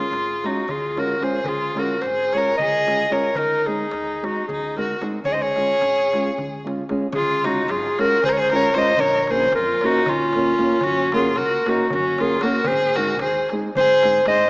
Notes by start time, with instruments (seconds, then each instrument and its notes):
Already playing: violin F4, clarinet G#4
0.11 upright bass G#1, darbuka tek
0.44 nylon-string guitar G#3 C#4 F4 G#4, violin D#4, clarinet F#4, darbuka tek
0.68 upright bass C#2, violin F4, clarinet G#4, darbuka dum
0.84 darbuka tek
0.96 nylon-string guitar G#3 C#4 F4 G#4, violin F#4, clarinet A#4, darbuka tek
1.10 darbuka tek
1.21 nylon-string guitar G#3 C#4 F4 G#4, violin G#4, clarinet C5, darbuka tek
1.34 darbuka tek
1.44 upright bass C#2, violin F4, clarinet G#4, darbuka dum
1.61 darbuka tek
1.75 nylon-string guitar G#3 C#4 F4 G#4, darbuka tek
1.79 violin F#4, clarinet A#4
2.02 upright bass G#1, clarinet C5, darbuka tek
2.06 violin G#4
2.32 nylon-string guitar G#3 C#4 F4 G#4, clarinet C#5, darbuka tek
2.37 violin A#4
2.58 upright bass C#2, violin G#4, clarinet D#5, darbuka dum
2.87 nylon-string guitar G#3 C#4 F4 G#4, darbuka tek
3.00 darbuka tek
3.10 nylon-string guitar G#3 C#4 F4 G#4, violin A#4, clarinet C#5, darbuka tek
3.24 darbuka tek
3.35 upright bass C#2, violin D#4, clarinet A#4, darbuka dum
3.66 nylon-string guitar G#3 C4 D#4 G#4, violin D#4, clarinet G#4, darbuka tek
3.91 upright bass D#2, darbuka tek
4.22 nylon-string guitar G#3 C4 D#4 G#4, clarinet F#4, darbuka tek
4.27 violin D#4
4.47 upright bass C#2, clarinet G#4, darbuka dum
4.52 violin D#4
4.64 darbuka tek
4.77 nylon-string guitar G#3 C4 D#4 G#4, violin F#4, clarinet A#4, darbuka tek
4.90 darbuka tek
5.01 nylon-string guitar G#3 C4 D#4 G#4, darbuka tek
5.14 darbuka tek
5.24 upright bass C#2, violin G#4, clarinet C#5, darbuka dum
5.32 violin C5, clarinet D#5
5.41 violin G#4, clarinet C#5
5.56 nylon-string guitar G#3 C#4 F4 G#4, darbuka tek
5.70 darbuka tek
5.81 upright bass G#1, darbuka tek
5.98 darbuka tek
6.13 nylon-string guitar G#3 C#4 F4 G#4, darbuka tek
6.25 darbuka tek
6.38 upright bass C#2, darbuka dum
6.54 darbuka tek
6.65 nylon-string guitar G#3 C#4 F4 G#4, darbuka tek
6.81 darbuka tek
6.89 nylon-string guitar G#3 C#4 F4 G#4, darbuka tek
7.02 darbuka tek
7.12 upright bass C#2, violin F4, clarinet G#4, darbuka dum
7.29 darbuka tek
7.44 nylon-string guitar G#3 C#4 F4 G#4, violin D#4, clarinet F#4, darbuka tek
7.68 upright bass G#1, violin F4, clarinet G#4, darbuka tek
7.84 darbuka tek
7.99 nylon-string guitar G#3 C#4 F4 G#4, violin F#4, clarinet A#4, darbuka tek
8.12 darbuka tek
8.23 upright bass C#2, violin G#4, clarinet C5, darbuka dum
8.29 violin A#4
8.33 clarinet C#5
8.37 violin G#4, clarinet C5
8.50 nylon-string guitar G#3 C#4 F4 G#4, violin A#4, darbuka tek
8.55 clarinet C#5
8.74 nylon-string guitar G#3 C#4 F4 G#4, violin C5, clarinet D#5, darbuka tek
8.97 upright bass A#1, violin A#4, clarinet C#5, darbuka dum
9.12 darbuka tek
9.22 violin A#4, clarinet C#5
9.27 nylon-string guitar A#3 C#4 F4 A#4, violin G#4, clarinet C5, darbuka tek
9.52 upright bass F2, violin F4, clarinet A#4, darbuka tek
9.68 darbuka tek
9.81 nylon-string guitar A#3 C#4 F4 A#4, clarinet F#4, darbuka tek
9.86 violin D#4
9.95 darbuka tek
10.06 upright bass A#1, violin C#4, clarinet F4, darbuka dum
10.33 nylon-string guitar A#3 C#4 F4 A#4, darbuka tek
10.58 nylon-string guitar A#3 C#4 F4 A#4
10.81 upright bass F#1, violin C#4, clarinet F#4, darbuka dum
10.97 darbuka tek
11.12 nylon-string guitar A#3 C#4 F#4 A#4, violin F4, clarinet G#4, darbuka tek
11.36 upright bass C#2, violin F#4, clarinet A#4, darbuka tek
11.52 darbuka tek
11.66 nylon-string guitar A#3 C#4 F#4 A#4, violin D#4, clarinet F#4, darbuka tek
11.79 darbuka tek
11.90 upright bass F#1, violin C#4, darbuka dum
11.95 clarinet F#4
12.18 nylon-string guitar A#3 C#4 F#4 A#4, violin F4, clarinet G#4, darbuka tek
12.41 nylon-string guitar A#3 C#4 F#4, violin F#4, clarinet A#4, darbuka tek
12.45 nylon-string guitar A#4
12.65 upright bass G#1, violin G#4, clarinet C5, darbuka dum
12.80 darbuka tek
12.95 nylon-string guitar G#3 C4 D#4 G#4, violin F#4, clarinet A#4, darbuka tek
13.09 darbuka tek
13.19 upright bass D#2, violin G#4, clarinet C5, darbuka tek
13.35 darbuka tek
13.49 nylon-string guitar G#3 C4 D#4, darbuka tek
13.53 nylon-string guitar G#4
13.62 darbuka tek
13.75 upright bass G#1, violin G#4, clarinet C5, darbuka dum
14.03 nylon-string guitar G#3 C4 D#4 G#4, darbuka tek
14.15 darbuka tek
14.26 nylon-string guitar G#3 C4 D#4 G#4, violin C5, clarinet D#5, darbuka tek